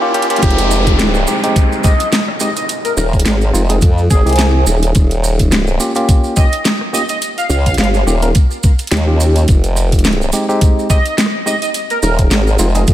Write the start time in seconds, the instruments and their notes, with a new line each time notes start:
Already playing: riser
0.02 tine electric piano A#3 C#4 F4 G4
0.14 tine electric piano A#3 C#4 F4 G4, closed hi-hat
0.22 closed hi-hat
0.30 tine electric piano A#3 C#4 F4 G4, closed hi-hat
0.36 closed hi-hat
0.42 wobble bass F1, tine electric piano G#3 C4 D#4 G4, kick, closed hi-hat, downlifter, maracas
0.51 closed hi-hat
0.58 closed hi-hat, maracas
0.71 cross-stick, maracas
0.87 kick, closed hi-hat, maracas
0.99 snare, closed hi-hat, maracas
1.14 maracas
1.27 tine electric piano G#3 C4 D#4 G4, maracas
1.44 tine electric piano G#3 C4 D#4 G4, closed hi-hat, maracas
1.56 kick, closed hi-hat, maracas
1.72 maracas
1.84 tine electric piano G#3 C4 D#4 G4, analog synth lead D#5, kick, maracas
2.00 closed hi-hat, maracas
2.12 snare, closed hi-hat, maracas
2.28 cross-stick
2.40 tine electric piano G#3 C4 D#4 G4, analog synth lead D#5, cross-stick, maracas
2.56 analog synth lead D#5, closed hi-hat, maracas
2.69 closed hi-hat, maracas
2.85 analog synth lead A#4, closed hi-hat, maracas
2.97 wobble bass D#1, analog synth lead A#4, cross-stick, maracas
3.13 kick, maracas
3.19 closed hi-hat
3.25 wobble bass G#1, snare, closed hi-hat, maracas
3.41 maracas
3.53 wobble bass F1, tine electric piano G#3 C4 D#4 F4, maracas
3.69 tine electric piano G#3 C4 D#4 G#4, closed hi-hat, maracas
3.81 wobble bass F2, kick, closed hi-hat, maracas
3.98 maracas
4.10 wobble bass G#1, analog synth lead G#4, kick, maracas
4.26 wobble bass C2, tine electric piano G#3 C4 D#4 G4, closed hi-hat, maracas
4.29 closed hi-hat
4.33 closed hi-hat
4.36 snare, closed hi-hat
4.39 closed hi-hat, maracas
4.66 wobble bass D#1, maracas
4.83 closed hi-hat, maracas
4.95 wobble bass D#1, kick, closed hi-hat, maracas
5.11 closed hi-hat, maracas
5.24 cross-stick, maracas
5.39 kick, closed hi-hat, maracas
5.51 snare, closed hi-hat, maracas
5.67 maracas
5.80 tine electric piano A#3 C#4 F4 G4, maracas
5.95 tine electric piano A#3 C#4 F4 G4, closed hi-hat, maracas
6.09 kick, closed hi-hat, maracas
6.24 maracas
6.36 tine electric piano A#3 C#4 F4 G4, analog synth lead D#5, kick, maracas
6.52 closed hi-hat, maracas
6.65 snare, closed hi-hat, maracas
6.81 cross-stick
6.93 tine electric piano A#3 C#4 F4 G4, analog synth lead D#5, cross-stick, maracas
7.09 analog synth lead D#5, closed hi-hat, maracas
7.22 closed hi-hat, maracas
7.38 analog synth lead F5, closed hi-hat, maracas
7.49 wobble bass C#2, analog synth lead F5, cross-stick, maracas
7.66 analog synth lead F5, kick, closed hi-hat, maracas
7.74 wobble bass G1, closed hi-hat, maracas
7.78 analog synth lead F5, snare, closed hi-hat
7.84 closed hi-hat
7.94 snare, maracas
8.06 wobble bass D#1, tine electric piano A#3 C#4 F4 G4, maracas
8.22 tine electric piano A#3 C#4 F4 A#4, closed hi-hat, maracas
8.35 kick, closed hi-hat, maracas
8.51 maracas
8.63 kick, maracas
8.79 closed hi-hat, maracas
8.87 closed hi-hat
8.91 wobble bass D#2, snare, closed hi-hat, maracas
8.97 closed hi-hat
9.07 tine electric piano A#3 C#4 F4 G4
9.20 maracas
9.36 closed hi-hat, maracas
9.48 wobble bass F1, kick, closed hi-hat, maracas
9.64 closed hi-hat, maracas
9.76 cross-stick, maracas
9.92 kick, closed hi-hat, maracas
9.99 closed hi-hat
10.04 snare, closed hi-hat, maracas
10.13 closed hi-hat
10.21 maracas
10.32 tine electric piano G#3 C4 D#4 G4, maracas
10.49 tine electric piano G#3 C4 D#4 G4, maracas
10.61 kick, closed hi-hat, maracas
10.79 maracas
10.90 tine electric piano G#3 C4 D#4 G4, analog synth lead D#5, kick, maracas
11.06 closed hi-hat, maracas
11.18 snare, closed hi-hat, maracas
11.26 cross-stick
11.46 tine electric piano G#3 C4 D#4 G4, analog synth lead D#5, cross-stick, maracas
11.62 analog synth lead D#5, closed hi-hat, maracas
11.74 closed hi-hat, maracas
11.90 analog synth lead A#4, closed hi-hat, maracas
12.03 wobble bass D#1, analog synth lead A#4, cross-stick, maracas
12.19 kick, closed hi-hat, maracas
12.31 wobble bass G#1, snare, closed hi-hat, maracas
12.47 maracas
12.59 wobble bass F1, tine electric piano G#3 C4 D#4 F4, maracas
12.75 tine electric piano G#3 C4 D#4 G#4, closed hi-hat, maracas
12.87 wobble bass F2, kick, closed hi-hat, maracas